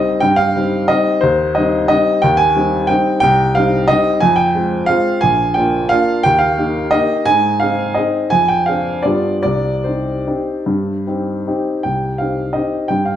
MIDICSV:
0, 0, Header, 1, 2, 480
1, 0, Start_track
1, 0, Key_signature, -3, "minor"
1, 0, Tempo, 332963
1, 314, Time_signature, 3, 2, 24, 8
1, 6553, Tempo, 340522
1, 10873, Tempo, 358423
1, 12793, Tempo, 401070
1, 16153, Tempo, 352113
1, 17939, End_track
2, 0, Start_track
2, 0, Title_t, "Upright piano"
2, 0, Program_c, 0, 0
2, 0, Note_on_c, 0, 55, 43
2, 0, Note_on_c, 0, 60, 46
2, 0, Note_on_c, 0, 63, 47
2, 0, Note_on_c, 0, 75, 90
2, 270, Note_off_c, 0, 55, 0
2, 275, Note_off_c, 0, 60, 0
2, 278, Note_off_c, 0, 63, 0
2, 295, Note_on_c, 0, 79, 101
2, 303, Note_off_c, 0, 75, 0
2, 324, Note_on_c, 0, 43, 62
2, 524, Note_on_c, 0, 77, 99
2, 544, Note_off_c, 0, 79, 0
2, 577, Control_c, 0, 64, 127
2, 789, Note_off_c, 0, 43, 0
2, 805, Note_on_c, 0, 55, 40
2, 814, Note_on_c, 0, 60, 40
2, 819, Note_on_c, 0, 63, 38
2, 1249, Note_off_c, 0, 55, 0
2, 1254, Note_off_c, 0, 60, 0
2, 1257, Note_off_c, 0, 63, 0
2, 1267, Note_on_c, 0, 75, 99
2, 1280, Note_off_c, 0, 77, 0
2, 1296, Note_on_c, 0, 55, 44
2, 1302, Note_on_c, 0, 60, 48
2, 1307, Control_c, 0, 64, 0
2, 1311, Note_on_c, 0, 63, 46
2, 1729, Note_off_c, 0, 55, 0
2, 1733, Note_off_c, 0, 60, 0
2, 1738, Note_off_c, 0, 63, 0
2, 1740, Note_on_c, 0, 72, 87
2, 1763, Note_off_c, 0, 75, 0
2, 1774, Note_on_c, 0, 39, 65
2, 2077, Control_c, 0, 64, 127
2, 2231, Note_on_c, 0, 75, 80
2, 2236, Note_off_c, 0, 72, 0
2, 2239, Note_off_c, 0, 39, 0
2, 2265, Note_on_c, 0, 55, 40
2, 2272, Note_on_c, 0, 63, 47
2, 2274, Note_on_c, 0, 60, 44
2, 2692, Note_off_c, 0, 75, 0
2, 2700, Note_off_c, 0, 55, 0
2, 2704, Note_off_c, 0, 63, 0
2, 2705, Note_off_c, 0, 60, 0
2, 2714, Note_on_c, 0, 75, 97
2, 2743, Note_on_c, 0, 55, 44
2, 2749, Note_on_c, 0, 60, 49
2, 2751, Note_on_c, 0, 63, 52
2, 2758, Control_c, 0, 64, 0
2, 3170, Note_off_c, 0, 55, 0
2, 3174, Note_off_c, 0, 60, 0
2, 3175, Note_off_c, 0, 63, 0
2, 3196, Note_on_c, 0, 79, 101
2, 3203, Note_off_c, 0, 75, 0
2, 3225, Note_on_c, 0, 39, 69
2, 3417, Note_on_c, 0, 80, 106
2, 3436, Note_off_c, 0, 79, 0
2, 3504, Control_c, 0, 64, 127
2, 3672, Note_off_c, 0, 39, 0
2, 3685, Note_on_c, 0, 55, 44
2, 3692, Note_on_c, 0, 60, 40
2, 3702, Note_on_c, 0, 63, 49
2, 4119, Note_off_c, 0, 55, 0
2, 4123, Note_off_c, 0, 60, 0
2, 4128, Note_off_c, 0, 63, 0
2, 4140, Note_on_c, 0, 79, 99
2, 4151, Note_off_c, 0, 80, 0
2, 4172, Note_on_c, 0, 55, 49
2, 4174, Note_on_c, 0, 60, 49
2, 4180, Control_c, 0, 64, 0
2, 4183, Note_on_c, 0, 63, 54
2, 4595, Note_off_c, 0, 79, 0
2, 4596, Note_off_c, 0, 55, 0
2, 4597, Note_off_c, 0, 60, 0
2, 4602, Note_off_c, 0, 63, 0
2, 4617, Note_on_c, 0, 79, 117
2, 4648, Note_on_c, 0, 36, 73
2, 4864, Control_c, 0, 64, 127
2, 5112, Note_off_c, 0, 79, 0
2, 5113, Note_off_c, 0, 36, 0
2, 5115, Note_on_c, 0, 77, 93
2, 5142, Note_on_c, 0, 55, 42
2, 5149, Note_on_c, 0, 60, 41
2, 5154, Note_on_c, 0, 63, 49
2, 5575, Note_off_c, 0, 55, 0
2, 5579, Note_off_c, 0, 60, 0
2, 5581, Note_off_c, 0, 63, 0
2, 5587, Note_on_c, 0, 75, 105
2, 5609, Note_off_c, 0, 77, 0
2, 5618, Note_on_c, 0, 55, 48
2, 5630, Note_on_c, 0, 60, 46
2, 5630, Note_on_c, 0, 63, 52
2, 5634, Control_c, 0, 64, 0
2, 6038, Note_off_c, 0, 55, 0
2, 6044, Note_off_c, 0, 60, 0
2, 6045, Note_off_c, 0, 63, 0
2, 6062, Note_on_c, 0, 80, 104
2, 6069, Note_off_c, 0, 75, 0
2, 6089, Note_on_c, 0, 41, 72
2, 6284, Note_on_c, 0, 79, 97
2, 6304, Note_off_c, 0, 80, 0
2, 6371, Control_c, 0, 64, 127
2, 6542, Note_off_c, 0, 41, 0
2, 6552, Note_on_c, 0, 56, 45
2, 6555, Note_on_c, 0, 60, 38
2, 6566, Note_on_c, 0, 65, 47
2, 6984, Note_off_c, 0, 56, 0
2, 6986, Note_off_c, 0, 60, 0
2, 6992, Note_off_c, 0, 65, 0
2, 7001, Note_on_c, 0, 77, 101
2, 7018, Note_off_c, 0, 79, 0
2, 7031, Note_on_c, 0, 56, 46
2, 7034, Note_on_c, 0, 60, 50
2, 7042, Note_on_c, 0, 65, 53
2, 7050, Control_c, 0, 64, 0
2, 7457, Note_off_c, 0, 56, 0
2, 7459, Note_off_c, 0, 60, 0
2, 7463, Note_off_c, 0, 65, 0
2, 7486, Note_on_c, 0, 80, 100
2, 7490, Note_off_c, 0, 77, 0
2, 7518, Note_on_c, 0, 34, 64
2, 7769, Control_c, 0, 64, 127
2, 7957, Note_on_c, 0, 79, 87
2, 7974, Note_off_c, 0, 80, 0
2, 7976, Note_off_c, 0, 34, 0
2, 7990, Note_on_c, 0, 58, 48
2, 7991, Note_on_c, 0, 62, 40
2, 8000, Note_on_c, 0, 65, 47
2, 8428, Note_off_c, 0, 58, 0
2, 8429, Note_off_c, 0, 62, 0
2, 8434, Note_off_c, 0, 65, 0
2, 8448, Note_on_c, 0, 77, 102
2, 8461, Note_off_c, 0, 79, 0
2, 8475, Note_on_c, 0, 58, 52
2, 8486, Note_on_c, 0, 62, 53
2, 8493, Note_on_c, 0, 65, 55
2, 8494, Control_c, 0, 64, 0
2, 8903, Note_off_c, 0, 58, 0
2, 8909, Note_off_c, 0, 62, 0
2, 8913, Note_off_c, 0, 65, 0
2, 8933, Note_on_c, 0, 79, 114
2, 8938, Note_off_c, 0, 77, 0
2, 8966, Note_on_c, 0, 39, 60
2, 9146, Note_on_c, 0, 77, 93
2, 9175, Note_off_c, 0, 79, 0
2, 9198, Control_c, 0, 64, 127
2, 9415, Note_off_c, 0, 39, 0
2, 9418, Note_on_c, 0, 58, 39
2, 9426, Note_on_c, 0, 63, 42
2, 9434, Note_on_c, 0, 67, 42
2, 9861, Note_off_c, 0, 58, 0
2, 9865, Note_off_c, 0, 63, 0
2, 9869, Note_off_c, 0, 67, 0
2, 9881, Note_on_c, 0, 75, 96
2, 9892, Note_off_c, 0, 77, 0
2, 9907, Note_on_c, 0, 58, 42
2, 9910, Note_on_c, 0, 63, 46
2, 9918, Note_on_c, 0, 67, 51
2, 9930, Control_c, 0, 64, 0
2, 10344, Note_off_c, 0, 58, 0
2, 10346, Note_off_c, 0, 63, 0
2, 10350, Note_off_c, 0, 67, 0
2, 10372, Note_on_c, 0, 80, 114
2, 10380, Note_off_c, 0, 75, 0
2, 10401, Note_on_c, 0, 44, 59
2, 10689, Control_c, 0, 64, 127
2, 10854, Note_on_c, 0, 77, 90
2, 10862, Note_off_c, 0, 44, 0
2, 10862, Note_off_c, 0, 80, 0
2, 10883, Note_on_c, 0, 60, 42
2, 10887, Note_on_c, 0, 63, 39
2, 10895, Note_on_c, 0, 68, 46
2, 11310, Note_off_c, 0, 60, 0
2, 11313, Note_off_c, 0, 63, 0
2, 11317, Note_off_c, 0, 68, 0
2, 11321, Note_on_c, 0, 75, 77
2, 11344, Note_off_c, 0, 77, 0
2, 11354, Note_on_c, 0, 60, 44
2, 11360, Note_on_c, 0, 63, 39
2, 11363, Note_on_c, 0, 68, 53
2, 11369, Control_c, 0, 64, 0
2, 11778, Note_off_c, 0, 60, 0
2, 11781, Note_off_c, 0, 63, 0
2, 11783, Note_off_c, 0, 68, 0
2, 11799, Note_on_c, 0, 80, 101
2, 11808, Note_off_c, 0, 75, 0
2, 11826, Note_on_c, 0, 41, 57
2, 12042, Note_off_c, 0, 80, 0
2, 12042, Note_on_c, 0, 79, 86
2, 12065, Control_c, 0, 64, 127
2, 12278, Note_on_c, 0, 77, 80
2, 12279, Note_off_c, 0, 41, 0
2, 12286, Note_off_c, 0, 79, 0
2, 12305, Note_on_c, 0, 60, 41
2, 12310, Note_on_c, 0, 62, 41
2, 12313, Note_on_c, 0, 68, 40
2, 12750, Note_off_c, 0, 60, 0
2, 12753, Note_off_c, 0, 62, 0
2, 12755, Note_off_c, 0, 68, 0
2, 12768, Note_on_c, 0, 74, 85
2, 12787, Note_off_c, 0, 77, 0
2, 12800, Note_on_c, 0, 59, 40
2, 12804, Control_c, 0, 64, 0
2, 12805, Note_on_c, 0, 43, 49
2, 12810, Note_on_c, 0, 65, 39
2, 12816, Note_on_c, 0, 67, 36
2, 13044, Control_c, 0, 64, 127
2, 13225, Note_off_c, 0, 59, 0
2, 13231, Note_off_c, 0, 65, 0
2, 13232, Note_off_c, 0, 74, 0
2, 13234, Note_off_c, 0, 67, 0
2, 13250, Note_on_c, 0, 74, 90
2, 13261, Note_off_c, 0, 43, 0
2, 13279, Note_on_c, 0, 36, 55
2, 13280, Control_c, 0, 64, 0
2, 13523, Control_c, 0, 64, 127
2, 13744, Note_on_c, 0, 72, 52
2, 13745, Note_off_c, 0, 36, 0
2, 13745, Note_off_c, 0, 74, 0
2, 13774, Note_on_c, 0, 60, 34
2, 13774, Note_on_c, 0, 63, 34
2, 13781, Note_on_c, 0, 67, 38
2, 14205, Note_off_c, 0, 60, 0
2, 14205, Note_off_c, 0, 63, 0
2, 14209, Note_off_c, 0, 67, 0
2, 14260, Control_c, 0, 64, 0
2, 14262, Note_on_c, 0, 60, 37
2, 14265, Note_on_c, 0, 63, 42
2, 14270, Note_on_c, 0, 67, 41
2, 14691, Note_off_c, 0, 60, 0
2, 14693, Note_off_c, 0, 63, 0
2, 14696, Note_off_c, 0, 67, 0
2, 14731, Note_on_c, 0, 43, 58
2, 15027, Control_c, 0, 64, 127
2, 15201, Note_off_c, 0, 43, 0
2, 15219, Note_on_c, 0, 60, 37
2, 15223, Note_on_c, 0, 63, 34
2, 15228, Note_on_c, 0, 67, 37
2, 15644, Note_off_c, 0, 60, 0
2, 15646, Note_off_c, 0, 63, 0
2, 15649, Note_off_c, 0, 67, 0
2, 15684, Note_off_c, 0, 72, 0
2, 15699, Note_on_c, 0, 60, 39
2, 15701, Note_on_c, 0, 63, 41
2, 15704, Control_c, 0, 64, 0
2, 15707, Note_on_c, 0, 67, 43
2, 16112, Note_off_c, 0, 60, 0
2, 16112, Note_off_c, 0, 63, 0
2, 16116, Note_off_c, 0, 67, 0
2, 16131, Note_on_c, 0, 79, 72
2, 16157, Note_on_c, 0, 36, 39
2, 16445, Control_c, 0, 64, 127
2, 16604, Note_on_c, 0, 77, 60
2, 16613, Note_off_c, 0, 36, 0
2, 16613, Note_off_c, 0, 79, 0
2, 16627, Note_on_c, 0, 60, 28
2, 16635, Note_on_c, 0, 63, 30
2, 16638, Note_on_c, 0, 67, 30
2, 17057, Note_off_c, 0, 60, 0
2, 17062, Note_off_c, 0, 63, 0
2, 17063, Note_off_c, 0, 67, 0
2, 17077, Note_on_c, 0, 75, 64
2, 17094, Note_off_c, 0, 77, 0
2, 17104, Note_on_c, 0, 60, 33
2, 17116, Note_on_c, 0, 63, 33
2, 17118, Control_c, 0, 64, 0
2, 17118, Note_on_c, 0, 67, 34
2, 17538, Note_off_c, 0, 60, 0
2, 17545, Note_off_c, 0, 63, 0
2, 17546, Note_off_c, 0, 67, 0
2, 17558, Note_on_c, 0, 79, 76
2, 17573, Note_off_c, 0, 75, 0
2, 17588, Note_on_c, 0, 43, 48
2, 17792, Note_on_c, 0, 77, 60
2, 17814, Note_off_c, 0, 79, 0
2, 17833, Control_c, 0, 64, 127
2, 17939, Note_off_c, 0, 43, 0
2, 17939, Note_off_c, 0, 77, 0
2, 17939, End_track
0, 0, End_of_file